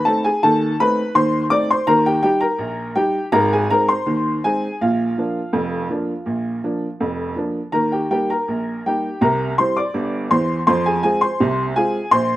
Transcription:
upright piano
0.05 A3 C4 D#4 A4 A5
0.24 G#4 G#5
0.43 D#2 D#3 A4 A5
0.80 A3 C4 D#4 B4 B5
1.15 D#2 D#3 C5 C6
1.50 A3 C4 D#4 D5 D6
1.71 C5 C6
1.87 D#2 D#3 A#4 A#5
2.06 G4 G5
2.23 G3 D#4 G4 G5
2.41 A#4 A#5
2.59 A#1 A#2
2.95 G3 D#4 G4 G5
3.32 G#1 G#2 A#4 A#5
3.53 G#4 G#5
3.70 G#3 C4 D#4 A#4 A#5
3.89 C5 C6
4.06 D#2 D#3
4.44 G#3 C4 D#4 G#4 G#5
4.81 A#1 A#2 F4 F5
5.18 F3 A#3 D4
5.53 F1 F2
5.90 F3 A#3 D4
6.26 A#1 A#2
6.64 F3 A#3 D4
7.00 F1 F2
7.36 F3 A#3 D4
7.72 D#2 D#3 A#4 A#5
7.92 G4 G5
8.11 G3 A#3 D#4 G4 G5
8.30 A#4 A#5
8.48 A#1 A#2
8.86 G3 A#3 D#4 G4 G5
9.21 C2 C3 A#4 A#5
9.58 G3 C4 E4 C5 C6
9.77 D5 D6
9.94 G1 G2
10.31 E2 E3 C5 C6
10.67 F2 F3 C5 C6
10.86 G#4 G#5
11.03 G#3 C4 F4 G#4 G#5
11.21 C5 C6
11.40 C2 C3
11.76 G#3 C4 F4 G#4 G#5
12.11 A#1 A#2 C5 C6

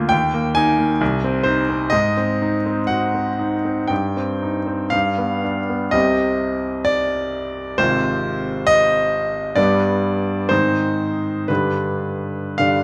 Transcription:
grand piano
Already playing: D2 A#3 F4 G#5
0.09 D#2 G5
0.34 A#3
0.55 D#4 G#5
0.78 A#3
1.01 C2
1.24 C4
1.44 D#4 C5
1.69 C4
1.90 G#2 D#5
2.17 C4
2.42 D#4
2.66 C4
2.87 F#4 F#5
3.14 C4
3.39 D#4
3.65 C4
3.88 G2 G5
4.17 C4
4.42 D#4
4.67 C4
4.90 G2 F5
5.18 B3
5.44 D4
5.70 B3
5.91 C2 C3 C4 G4 D#5
6.85 D5
7.78 G#1 C3 C4 F4 C5
8.67 D#5
9.56 G2 G3 B3 D4 D5
10.49 G#2 D#3 C4 D#4 C5
11.48 G2 D3 D4 G4 B4
12.58 G2 D3 D4 G4 F5

